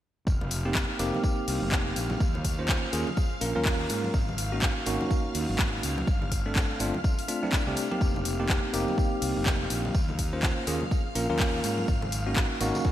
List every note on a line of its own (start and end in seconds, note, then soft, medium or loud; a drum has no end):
0.27 0.83 F1 medium
0.27 8.00 F5 medium
0.27 8.00 F6 medium
0.27 kick loud
0.27 tambourine medium
0.41 high conga medium
0.41 low conga medium
0.51 open hi-hat loud
0.51 tambourine medium
0.65 0.97 A#3 medium
0.65 0.97 C4 medium
0.65 0.97 D#4 medium
0.65 0.97 G4 medium
0.75 kick loud
0.75 snare loud
0.75 clap loud
0.75 tambourine medium
0.99 1.10 F1 medium
0.99 2.19 A#3 loud
0.99 2.19 C4 medium
0.99 2.19 D#4 medium
0.99 2.19 G4 loud
0.99 open hi-hat loud
0.99 tambourine medium
1.14 snare soft
1.14 high conga medium
1.14 low conga medium
1.24 kick loud
1.24 tambourine medium
1.48 1.58 C2 medium
1.48 open hi-hat loud
1.48 open hi-hat medium
1.62 1.92 F1 medium
1.62 high conga medium
1.71 kick loud
1.71 snare loud
1.71 clap loud
1.71 tambourine medium
1.96 2.15 A#1 medium
1.96 open hi-hat loud
1.96 tambourine medium
2.10 snare soft
2.10 high conga medium
2.10 low conga medium
2.20 2.77 D#2 medium
2.20 kick loud
2.20 tambourine medium
2.35 high conga medium
2.35 low conga medium
2.45 kick medium
2.45 open hi-hat loud
2.45 tambourine medium
2.59 2.91 A#3 medium
2.59 2.91 C#4 medium
2.59 2.91 F4 medium
2.59 2.91 C5 medium
2.69 kick loud
2.69 snare loud
2.69 clap loud
2.69 tambourine medium
2.93 3.03 D#2 medium
2.93 3.08 A#3 medium
2.93 3.08 C#4 medium
2.93 3.08 F4 medium
2.93 3.08 G#4 loud
2.93 open hi-hat loud
2.93 tambourine medium
3.07 high conga medium
3.07 low conga medium
3.17 kick loud
3.17 tambourine medium
3.41 3.52 A#1 medium
3.41 3.52 A#3 medium
3.41 3.52 C#4 medium
3.41 3.52 F4 medium
3.41 3.52 A#4 loud
3.41 open hi-hat loud
3.41 tambourine medium
3.55 3.85 D#2 medium
3.55 4.13 A#3 medium
3.55 4.13 C#4 medium
3.55 4.13 F4 medium
3.55 4.13 A#4 loud
3.55 high conga medium
3.65 kick loud
3.65 clap loud
3.65 open hi-hat medium
3.89 4.08 G#2 medium
3.89 open hi-hat loud
3.89 tambourine medium
4.04 high conga medium
4.14 4.70 G#1 medium
4.14 kick loud
4.14 tambourine medium
4.28 high conga medium
4.28 low conga medium
4.38 open hi-hat loud
4.38 tambourine medium
4.52 4.84 A#3 medium
4.52 4.84 C#4 medium
4.52 4.84 D#4 medium
4.52 4.84 F#4 medium
4.62 kick loud
4.62 snare loud
4.62 clap loud
4.62 tambourine medium
4.86 4.97 G#1 medium
4.86 6.06 A#3 loud
4.86 6.06 C#4 medium
4.86 6.06 D#4 medium
4.86 6.06 F#4 loud
4.86 open hi-hat loud
4.86 tambourine medium
5.00 snare soft
5.00 high conga medium
5.00 low conga medium
5.11 kick loud
5.11 tambourine medium
5.34 5.45 D#2 medium
5.34 open hi-hat medium
5.34 open hi-hat loud
5.49 5.79 G#1 medium
5.49 high conga medium
5.58 kick loud
5.58 snare loud
5.58 clap loud
5.58 tambourine medium
5.83 6.02 C#2 medium
5.83 open hi-hat loud
5.83 tambourine medium
5.97 snare soft
5.97 high conga medium
5.97 low conga medium
6.07 6.64 G1 medium
6.07 kick loud
6.07 tambourine medium
6.22 high conga medium
6.22 low conga medium
6.32 kick medium
6.32 open hi-hat loud
6.32 tambourine medium
6.46 6.78 A3 medium
6.46 6.78 C4 medium
6.46 6.78 D4 medium
6.46 6.78 A4 medium
6.55 kick loud
6.55 snare loud
6.55 clap loud
6.55 tambourine medium
6.79 6.90 G1 medium
6.79 6.95 A3 medium
6.79 6.95 C4 medium
6.79 6.95 D4 medium
6.79 6.95 F4 loud
6.79 open hi-hat loud
6.79 tambourine medium
6.94 high conga medium
6.94 low conga medium
7.04 kick loud
7.04 tambourine medium
7.19 open hi-hat medium
7.28 7.41 A3 medium
7.28 7.41 C4 medium
7.28 7.41 D4 medium
7.28 7.41 F4 loud
7.28 open hi-hat loud
7.28 tambourine medium
7.43 7.63 A3 medium
7.43 7.64 C4 medium
7.43 7.64 D4 medium
7.43 7.64 E4 medium
7.43 snare soft
7.43 high conga medium
7.52 kick loud
7.52 snare loud
7.52 clap loud
7.52 tambourine medium
7.67 7.74 C2 medium
7.67 7.88 A3 medium
7.67 7.88 C4 medium
7.67 7.88 D4 medium
7.67 7.88 G4 loud
7.76 open hi-hat loud
7.76 tambourine medium
7.91 8.36 A#3 medium
7.91 8.36 C4 medium
7.91 8.36 D#4 medium
7.91 8.36 G4 medium
7.91 high conga medium
8.01 8.57 F1 medium
8.01 12.92 F5 medium
8.01 12.92 F6 medium
8.01 kick loud
8.01 tambourine medium
8.14 high conga medium
8.14 low conga medium
8.25 open hi-hat loud
8.25 tambourine medium
8.39 8.71 A#3 medium
8.39 8.71 C4 medium
8.39 8.71 D#4 medium
8.39 8.71 G4 medium
8.49 kick loud
8.49 snare loud
8.49 clap loud
8.49 tambourine medium
8.73 8.84 F1 medium
8.73 9.93 A#3 loud
8.73 9.93 C4 medium
8.73 9.93 D#4 medium
8.73 9.94 G4 loud
8.73 open hi-hat loud
8.73 tambourine medium
8.88 snare soft
8.88 high conga medium
8.88 low conga medium
8.98 kick loud
8.98 tambourine medium
9.22 9.32 C2 medium
9.22 open hi-hat loud
9.22 open hi-hat medium
9.36 9.66 F1 medium
9.36 high conga medium
9.46 kick loud
9.46 snare loud
9.46 clap loud
9.46 tambourine medium
9.70 9.89 A#1 medium
9.70 open hi-hat loud
9.70 tambourine medium
9.85 snare soft
9.85 high conga medium
9.85 low conga medium
9.94 10.51 D#2 loud
9.94 kick loud
9.94 tambourine medium
10.08 high conga medium
10.08 low conga medium
10.19 kick medium
10.19 open hi-hat loud
10.19 tambourine medium
10.33 10.65 A#3 medium
10.33 10.65 C#4 medium
10.33 10.65 F4 medium
10.33 10.65 C5 medium
10.43 kick loud
10.43 snare loud
10.43 clap loud
10.43 tambourine medium
10.67 10.77 D#2 medium
10.67 10.82 A#3 medium
10.67 10.82 C#4 medium
10.67 10.82 F4 medium
10.67 10.82 G#4 loud
10.67 open hi-hat loud
10.67 tambourine medium
10.81 high conga medium
10.81 low conga medium
10.91 kick loud
10.91 tambourine medium
11.15 11.26 A#1 medium
11.15 11.26 A#3 medium
11.15 11.26 C#4 medium
11.15 11.26 F4 medium
11.15 11.26 A#4 loud
11.15 open hi-hat loud
11.15 tambourine medium
11.29 11.60 D#2 medium
11.29 11.87 A#3 medium
11.29 11.87 C#4 medium
11.29 11.87 F4 medium
11.29 11.87 A#4 loud
11.29 high conga medium
11.39 kick loud
11.39 clap loud
11.39 open hi-hat medium
11.64 11.83 G#2 medium
11.64 open hi-hat loud
11.64 tambourine medium
11.78 high conga medium
11.88 12.44 G#1 loud
11.88 kick loud
11.88 tambourine medium
12.02 high conga medium
12.02 low conga medium
12.12 open hi-hat loud
12.12 tambourine medium
12.26 12.58 A#3 medium
12.26 12.58 C#4 medium
12.26 12.58 D#4 medium
12.26 12.58 F#4 medium
12.36 kick loud
12.36 snare loud
12.36 clap loud
12.36 tambourine medium
12.60 12.71 G#1 medium
12.60 12.92 A#3 loud
12.60 12.92 C#4 medium
12.60 12.92 D#4 medium
12.60 12.92 F#4 loud
12.60 snare medium
12.60 open hi-hat medium
12.60 tambourine medium
12.75 snare loud
12.75 tambourine medium
12.75 high conga medium
12.75 low conga medium
12.85 kick loud
12.85 snare medium
12.85 tambourine medium